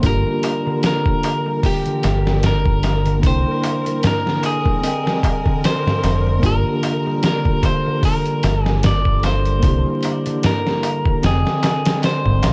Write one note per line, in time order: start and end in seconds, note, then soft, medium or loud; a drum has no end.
0.00 0.23 G1 loud
0.00 3.14 A#3 medium
0.00 3.16 D4 medium
0.00 12.53 A#4 medium
0.00 kick loud
0.00 open hi-hat medium
0.00 darbuka tek soft
0.06 3.17 F4 medium
0.06 3.19 G4 loud
0.06 0.81 A#4 loud
0.26 0.68 G3 medium
0.26 darbuka tek soft
0.43 open hi-hat medium
0.43 darbuka tek medium
0.66 1.84 D3 loud
0.66 darbuka tek soft
0.83 1.67 A#4 loud
0.83 snare loud
0.83 open hi-hat medium
0.83 darbuka tek medium
1.06 1.44 G3 medium
1.06 kick medium
1.06 darbuka tek soft
1.23 open hi-hat medium
1.23 darbuka tek medium
1.46 1.88 G3 medium
1.46 darbuka tek soft
1.63 2.47 G4 loud
1.63 kick loud
1.63 open hi-hat medium
1.63 darbuka tek soft
1.85 3.04 D3 loud
1.85 closed hi-hat soft
1.85 darbuka tek soft
2.03 3.20 G1 medium
2.03 snare medium
2.03 open hi-hat medium
2.03 darbuka tek medium
2.25 2.64 G3 medium
2.25 snare medium
2.25 darbuka tek soft
2.43 3.26 A#4 medium
2.43 snare loud
2.43 open hi-hat medium
2.43 darbuka tek medium
2.43 darbuka dum medium
2.65 3.08 G3 medium
2.65 kick medium
2.65 darbuka tek soft
2.83 snare soft
2.83 open hi-hat medium
2.83 darbuka tek medium
3.05 3.28 D3 loud
3.05 closed hi-hat soft
3.05 darbuka tek soft
3.19 4.74 A#3 medium
3.19 4.76 D4 medium
3.23 3.43 C2 loud
3.23 4.77 E4 medium
3.23 4.01 C5 loud
3.23 kick loud
3.23 open hi-hat medium
3.23 darbuka tek soft
3.28 4.78 G5 medium
3.46 3.84 G3 medium
3.46 darbuka tek soft
3.63 open hi-hat medium
3.63 darbuka tek medium
3.85 4.28 G3 medium
3.85 closed hi-hat soft
3.85 darbuka tek soft
4.03 snare loud
4.03 open hi-hat medium
4.03 darbuka tek medium
4.03 darbuka dum medium
4.07 4.45 A#4 loud
4.25 4.88 D3 medium
4.25 snare soft
4.25 darbuka tek soft
4.43 5.65 G#4 medium
4.43 open hi-hat medium
4.43 darbuka tek medium
4.66 4.88 G3 medium
4.66 kick medium
4.66 darbuka tek soft
4.82 6.35 C4 medium
4.82 6.37 D#5 medium
4.82 open hi-hat medium
4.82 darbuka tek soft
4.87 6.38 G5 medium
5.05 5.48 G3 medium
5.05 snare medium
5.05 darbuka tek soft
5.23 kick medium
5.23 open hi-hat medium
5.23 darbuka tek loud
5.45 6.48 D3 loud
5.45 kick medium
5.45 darbuka tek soft
5.64 6.46 C5 loud
5.64 snare loud
5.64 open hi-hat medium
5.64 darbuka tek medium
5.85 6.24 G3 medium
5.85 snare soft
5.85 darbuka tek soft
5.85 darbuka dum medium
6.03 6.39 F1 medium
6.03 snare soft
6.03 open hi-hat medium
6.03 darbuka tek medium
6.25 6.48 G3 medium
6.25 darbuka tek soft
6.39 9.54 A#3 loud
6.39 9.56 D4 medium
6.39 kick loud
6.39 darbuka tek medium
6.43 6.63 G1 loud
6.43 9.57 F4 medium
6.43 7.25 A#4 loud
6.43 open hi-hat medium
6.48 9.58 G4 loud
6.65 7.85 D3 loud
6.65 darbuka tek soft
6.83 open hi-hat medium
6.83 darbuka tek medium
7.06 7.45 G3 medium
7.06 darbuka tek soft
7.23 7.65 A#4 loud
7.23 snare loud
7.23 open hi-hat medium
7.23 darbuka tek soft
7.45 7.88 G3 medium
7.45 kick medium
7.45 darbuka tek soft
7.63 8.05 C5 loud
7.63 kick loud
7.63 open hi-hat medium
7.63 darbuka tek medium
7.86 9.05 D3 medium
7.86 darbuka tek soft
8.03 8.64 A#4 loud
8.03 kick loud
8.03 open hi-hat medium
8.03 darbuka tek soft
8.26 8.65 G3 medium
8.26 closed hi-hat soft
8.26 darbuka tek soft
8.43 9.60 G1 medium
8.43 snare medium
8.43 open hi-hat medium
8.43 darbuka tek medium
8.64 9.08 G3 medium
8.64 8.86 G#4 loud
8.64 snare medium
8.64 darbuka tek soft
8.83 9.25 D5 loud
8.83 snare loud
8.83 open hi-hat medium
8.83 darbuka tek soft
8.83 darbuka dum medium
9.05 9.68 D3 loud
9.05 kick medium
9.05 darbuka tek soft
9.23 10.40 C5 loud
9.23 snare soft
9.23 open hi-hat medium
9.23 darbuka tek medium
9.45 9.68 G3 medium
9.45 closed hi-hat soft
9.45 darbuka tek soft
9.59 9.83 C2 loud
9.59 11.14 A#3 medium
9.59 11.15 D4 medium
9.59 kick loud
9.59 open hi-hat medium
9.64 11.17 E4 medium
9.64 darbuka tek medium
9.68 11.18 G4 medium
9.86 10.28 G3 medium
9.86 darbuka tek soft
10.03 open hi-hat medium
10.03 darbuka tek medium
10.26 11.28 D3 medium
10.26 closed hi-hat soft
10.26 darbuka tek soft
10.43 11.26 A#4 loud
10.43 snare loud
10.43 open hi-hat medium
10.43 darbuka tek soft
10.43 darbuka dum medium
10.66 11.05 G3 medium
10.66 snare soft
10.66 darbuka tek soft
10.83 open hi-hat medium
10.83 darbuka tek medium
11.05 11.28 G3 medium
11.05 kick loud
11.05 darbuka tek soft
11.23 11.43 F1 medium
11.23 12.53 C4 medium
11.23 12.00 G#4 medium
11.23 12.53 D#5 medium
11.23 snare loud
11.23 open hi-hat medium
11.23 darbuka tek soft
11.28 12.53 G5 medium
11.45 12.53 D3 loud
11.45 snare soft
11.45 darbuka tek soft
11.63 snare loud
11.63 open hi-hat medium
11.63 darbuka tek medium
11.85 12.25 G3 medium
11.85 snare loud
11.85 open hi-hat medium
11.85 darbuka tek soft
12.02 12.53 C5 loud
12.02 snare loud
12.02 open hi-hat medium
12.02 darbuka tek soft
12.25 12.41 G#1 medium
12.25 12.53 G3 medium
12.25 kick medium
12.25 darbuka tek soft
12.25 darbuka dum medium
12.43 12.53 A#1 loud
12.43 snare loud
12.43 open hi-hat medium
12.43 darbuka tek loud